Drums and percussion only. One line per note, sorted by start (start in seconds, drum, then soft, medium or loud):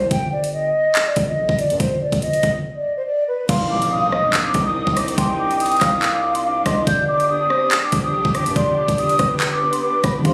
0.11 kick loud
0.11 closed hi-hat medium
0.44 closed hi-hat medium
0.95 clap loud
0.95 closed hi-hat medium
1.16 kick medium
1.16 closed hi-hat medium
1.49 kick medium
1.59 closed hi-hat medium
1.70 closed hi-hat medium
1.80 kick loud
1.80 closed hi-hat medium
2.12 kick medium
2.12 closed hi-hat medium
2.22 closed hi-hat medium
2.33 closed hi-hat medium
2.43 kick loud
2.43 closed hi-hat medium
3.49 kick loud
3.49 closed hi-hat medium
3.49 crash loud
3.82 closed hi-hat medium
4.12 cross-stick medium
4.33 clap loud
4.33 closed hi-hat medium
4.54 kick medium
4.54 closed hi-hat medium
4.87 kick loud
4.97 cross-stick medium
4.97 closed hi-hat medium
5.08 closed hi-hat medium
5.18 kick loud
5.18 closed hi-hat medium
5.51 closed hi-hat medium
5.60 closed hi-hat medium
5.66 closed hi-hat medium
5.72 closed hi-hat medium
5.76 closed hi-hat soft
5.81 kick loud
5.81 cross-stick medium
5.81 clap medium
5.81 closed hi-hat medium
6.02 clap loud
6.02 closed hi-hat medium
6.35 closed hi-hat medium
6.66 kick medium
6.66 cross-stick medium
6.66 closed hi-hat medium
6.87 kick loud
6.87 closed hi-hat medium
7.20 closed hi-hat medium
7.50 cross-stick medium
7.71 clap loud
7.71 closed hi-hat medium
7.92 kick loud
7.92 closed hi-hat medium
8.25 kick loud
8.35 cross-stick medium
8.35 closed hi-hat medium
8.46 closed hi-hat medium
8.56 kick loud
8.56 closed hi-hat medium
8.88 kick loud
8.88 closed hi-hat medium
8.98 closed hi-hat medium
9.09 closed hi-hat medium
9.19 kick loud
9.19 cross-stick medium
9.19 closed hi-hat medium
9.40 clap loud
9.40 closed hi-hat medium
9.73 closed hi-hat medium
10.04 kick loud
10.04 cross-stick medium
10.04 closed hi-hat medium
10.25 kick loud
10.25 closed hi-hat medium